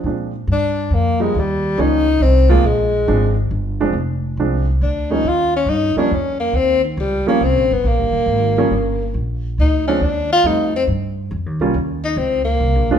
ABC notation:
X:1
M:3/4
L:1/16
Q:"Swing" 1/4=138
K:Bbmix
V:1 name="Tenor saxophone"
z4 D4 B,2 A,2 | G,4 E4 C2 B,2 | A,6 z6 | z8 D2 E2 |
F2 _D2 E2 =D2 _D2 B,2 | C2 E,2 G,2 B,2 C2 _C2 | B,12 | z4 E2 _D2 =D2 F2 |
E2 C2 z8 | z2 E2 C2 B,6 |]
V:2 name="Upright piano"
d z8 z3 | z12 | z12 | z12 |
z12 | z12 | z12 | z12 |
z12 | z12 |]
V:3 name="Upright piano"
[F,A,CD]2 z8 [F,G,B,E]2 | z4 [F,G,B,_D]2 z4 [F,A,CF]2 | z4 [F,A,CD]2 z4 [F,A,CD]2 | z4 [F,A,CD]2 z4 [F,G,B,_D]2 |
z6 [F,G,B,_D]2 z4 | z6 [F,G,B,_D]2 z4 | z6 [F,G,B,_D]2 z4 | z6 [F,A,CD]2 z4 |
[G,=A,CE]2 z8 [G,B,_DF]2 | z8 z2 [A,CDF]2 |]
V:4 name="Upright bass" clef=bass
B,,4 G,,4 F,,4 | E,,4 _D,,4 C,,4 | B,,,4 A,,,4 G,,,4 | F,,,4 C,,4 D,,4 |
E,,4 G,,2 z2 F,,4 | E,,4 _D,,2 z2 (3C,,2 B,,,2 G,,,2 | (3B,,,2 G,,,2 E,,,2 A,,,4 G,,,4 | B,,,4 D,,4 E,,4 |
F,,4 G,,4 (3F,,2 E,,2 C,,2 | E,,4 _D,,4 (3C,,2 B,,,2 G,,,2 |]